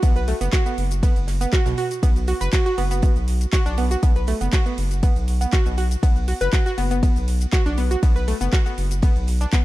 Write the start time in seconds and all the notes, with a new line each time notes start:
0.03 B1 B3, kick, closed hi-hat, ride, shaker
0.16 B4, closed hi-hat, shaker
0.28 A3, closed hi-hat, open hi-hat
0.41 F#1 B3, closed hi-hat, shaker
0.53 F#4, kick, snare, clap, closed hi-hat, ride, shaker
0.66 B3, snare, closed hi-hat, shaker
0.78 F#1, closed hi-hat, open hi-hat
0.91 closed hi-hat, shaker
1.03 B3, kick, closed hi-hat, ride, shaker
1.16 F#1, closed hi-hat, shaker
1.28 snare, closed hi-hat, open hi-hat
1.41 B3, closed hi-hat, shaker
1.53 F#4, kick, clap, closed hi-hat, ride, shaker
1.66 B1 B2, snare, closed hi-hat, shaker
1.78 F#4, closed hi-hat, open hi-hat
1.91 closed hi-hat, shaker
2.03 B1 B3, kick, closed hi-hat, ride, shaker
2.16 closed hi-hat, shaker
2.27 F#4, closed hi-hat, open hi-hat
2.41 F#1 B4, closed hi-hat, shaker
2.53 F#4, kick, snare, clap, closed hi-hat, ride, shaker
2.66 F#4, closed hi-hat, shaker
2.78 F#1 B3, closed hi-hat, open hi-hat
2.91 B3, closed hi-hat, shaker
3.02 B3, kick, closed hi-hat, ride, shaker
3.16 B1, closed hi-hat, shaker
3.28 closed hi-hat, open hi-hat
3.41 closed hi-hat, shaker
3.52 F#4, kick, snare, clap, closed hi-hat, ride, shaker
3.66 B1 D4, closed hi-hat, shaker
3.78 B3, closed hi-hat, open hi-hat
3.91 F#4, closed hi-hat, shaker
4.03 B1 B3, kick, closed hi-hat, ride, shaker
4.16 B4, closed hi-hat, shaker
4.27 A3, closed hi-hat, open hi-hat
4.41 F#1 B3, closed hi-hat, shaker
4.53 F#4, kick, snare, clap, closed hi-hat, ride, shaker
4.65 B3, snare, closed hi-hat, shaker
4.78 F#1, closed hi-hat, open hi-hat
4.91 closed hi-hat, shaker
5.03 B3, kick, closed hi-hat, ride, shaker
5.16 B1, closed hi-hat, shaker
5.28 closed hi-hat, open hi-hat
5.41 B3, closed hi-hat, shaker
5.53 F#4, kick, snare, clap, closed hi-hat, ride, shaker
5.66 B1 B2, closed hi-hat, shaker
5.78 F#4, closed hi-hat, open hi-hat
5.91 closed hi-hat, shaker
6.03 B1 B3, kick, closed hi-hat, ride, shaker
6.16 closed hi-hat, shaker
6.28 F#4, closed hi-hat, open hi-hat
6.40 F#1 B4, closed hi-hat, shaker
6.53 F#4, kick, snare, clap, closed hi-hat, ride, shaker
6.66 F#4, closed hi-hat, shaker
6.78 F#1 B3, closed hi-hat, open hi-hat
6.91 B3, closed hi-hat, shaker
7.03 B3, kick, closed hi-hat, ride, shaker
7.16 B1, closed hi-hat, shaker
7.28 closed hi-hat, open hi-hat
7.41 closed hi-hat, shaker
7.52 F#4, kick, snare, clap, closed hi-hat, ride, shaker
7.66 B1 D4, closed hi-hat, shaker
7.77 B3, closed hi-hat, open hi-hat
7.91 F#4, closed hi-hat, shaker
8.03 B1 B3, kick, closed hi-hat, ride, shaker
8.16 B4, closed hi-hat, shaker
8.28 A3, closed hi-hat, open hi-hat
8.41 F#1 B3, closed hi-hat, shaker
8.53 F#4, kick, snare, clap, closed hi-hat, ride, shaker
8.65 B3, snare, closed hi-hat, shaker
8.78 F#1, closed hi-hat, open hi-hat
8.91 closed hi-hat, shaker
9.02 B3, kick, closed hi-hat, ride, shaker
9.16 B1, closed hi-hat, shaker
9.27 closed hi-hat, open hi-hat
9.41 D4, closed hi-hat, shaker
9.53 B3, kick, snare, clap, closed hi-hat, ride, shaker